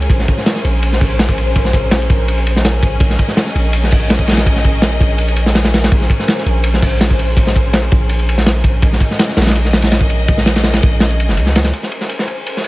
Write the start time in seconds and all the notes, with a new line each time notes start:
Already playing: C#4 G#4 A#4
0.02 ride
0.10 A#1 C5, kick, ride
0.19 snare
0.28 kick, ride
0.38 snare
0.46 snare, ride
0.56 snare
0.64 A#1, ride
0.83 ride
0.93 snare
1.01 kick, open hi-hat
1.19 snare, ride
1.29 kick
1.38 ride
1.56 kick, ride
1.65 snare
1.73 kick, ride
1.91 snare, ride
2.02 ride
2.10 A#1, kick, ride
2.28 ride
2.38 ride
2.47 ride
2.56 snare
2.65 snare, ride
2.83 kick, ride
3.00 A#1 D#5, kick, ride
3.10 snare
3.19 kick, ride
3.28 snare
3.37 snare, ride
3.46 snare
3.55 A#1, ride
3.73 ride
3.83 snare
3.91 kick, open hi-hat
4.10 snare, ride
4.19 kick
4.28 snare, ride
4.32 snare, ride
4.37 snare, ride
4.46 kick, ride
4.56 snare
4.64 kick, ride
4.82 snare, ride
4.92 ride
5.00 A#1, kick, ride
5.18 ride
5.28 ride
5.36 ride
5.46 snare
5.55 snare, ride
5.65 snare, ride
5.74 snare, ride
5.84 snare, ride
5.92 A#1 C5, kick, ride
6.01 snare
6.10 kick, ride
6.19 snare
6.28 snare, ride
6.38 snare
6.46 A#1, ride
6.64 ride
6.74 snare
6.82 kick, open hi-hat
7.01 snare, ride
7.11 kick
7.19 ride
7.37 kick, ride
7.47 snare
7.56 kick, ride
7.73 snare, ride
7.83 ride
7.92 A#1, kick, ride
8.09 ride
8.19 ride
8.29 ride
8.38 snare
8.46 snare, ride
8.64 kick, ride
8.82 A#1 D#5, kick, ride
8.93 snare
9.00 kick, ride
9.11 snare
9.19 snare, ride
9.28 snare
9.37 A#1, snare, ride
9.42 snare, ride
9.47 snare, ride
9.50 snare, ride
9.55 ride
9.65 snare
9.73 snare, ride
9.82 snare, ride
9.92 snare, ride
10.01 kick
10.10 ride
10.28 kick, ride
10.38 snare
10.46 snare, ride
10.56 snare, ride
10.64 snare, ride
10.73 snare, ride
10.83 A#1, kick, ride
11.00 snare, ride
11.10 ride
11.20 ride
11.29 F1, snare
11.37 C#2, ride
11.46 snare
11.56 snare, ride
11.64 snare, ride
11.73 C#4 G#4 A#4 C5, ride
11.83 snare
11.92 ride
12.01 snare
12.09 ride
12.19 snare
12.28 ride
12.46 ride
12.57 snare
12.64 open hi-hat